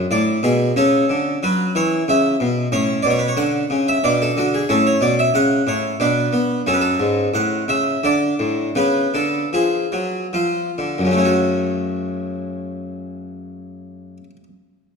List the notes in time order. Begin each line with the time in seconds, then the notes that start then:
Already playing: D4
0.11 A2 D5
0.43 B2 G#4
0.76 C#3 C#4 A4
1.10 D3
1.43 F#3 B4
1.75 E3 C#5
2.08 C#3 E5
2.40 B2
2.72 A2 C#4 C#5
3.02 B2 D5
3.10 C#5
3.19 B4
3.28 C#5
3.37 D3 F#5
3.70 C#3
3.88 E5
4.04 B2 D4 D5
4.22 A4
4.37 D3 F#4
4.54 G#4
4.69 A2 C#4 A4
4.87 C#5
5.01 B2 D5
5.19 E5
5.34 C#3 F#5
5.67 A2 C#5
6.00 B2 D4 B4
6.33 B3
6.67 F#2 C#4 A4
6.73 B4
6.81 A4
7.00 G#2
7.34 A2 F#5
7.68 C#3 E5
8.04 D3 D4 D5
8.39 A2
8.75 C#3 B3 B4
9.14 D3 A4
9.53 F3 G#4
9.92 F#3
10.33 F3 F4
10.78 D3
10.98 F#2
11.05 C#3
11.11 A3
11.18 C#4
11.25 F#4